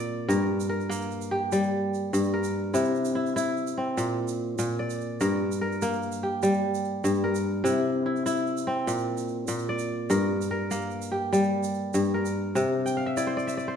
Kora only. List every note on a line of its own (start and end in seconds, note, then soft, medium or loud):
0.00 0.35 A#2 medium
0.00 0.67 C4 medium
0.00 0.99 D5 medium
0.28 2.12 G2 medium
0.28 0.69 A#4 medium
0.69 1.97 A#4 medium
0.89 2.82 A#3 medium
1.31 2.72 G4 medium
1.52 2.80 G3 medium
2.13 2.80 G2 medium
2.34 3.61 A#4 medium
2.74 4.02 C3 medium
2.74 3.15 E4 medium
3.15 3.36 E4 medium
3.36 4.93 E4 medium
3.78 5.58 C4 medium
3.97 4.57 A#2 medium
4.59 5.25 A#2 medium
4.79 5.90 D5 medium
5.21 7.03 G2 medium
5.21 5.61 A#4 medium
5.61 6.89 A#4 medium
5.82 7.75 A#3 medium
6.23 7.64 G4 medium
6.43 7.70 G3 medium
7.04 7.70 G2 medium
7.24 8.51 A#4 medium
7.64 8.93 C3 medium
7.64 8.05 E4 medium
8.06 8.25 E4 medium
8.26 9.83 E4 medium
8.67 10.47 C4 medium
8.87 9.47 A#2 medium
9.48 10.16 A#2 medium
9.69 10.80 D5 medium
10.10 11.93 G2 medium
10.10 10.50 A#4 medium
10.51 11.78 A#4 medium
10.71 12.64 A#3 medium
11.12 12.53 G4 medium
11.33 12.61 G3 medium
11.94 12.61 G2 medium
12.14 13.41 A#4 medium
12.55 13.76 C3 medium
12.86 13.76 G5 medium
12.97 13.23 F5 medium
13.06 13.47 E5 medium
13.17 13.76 E4 medium
13.17 13.36 D5 medium
13.27 13.67 C5 medium
13.37 13.57 D5 medium
13.47 13.76 E5 medium
13.57 13.76 D5 medium
13.68 13.76 C5 medium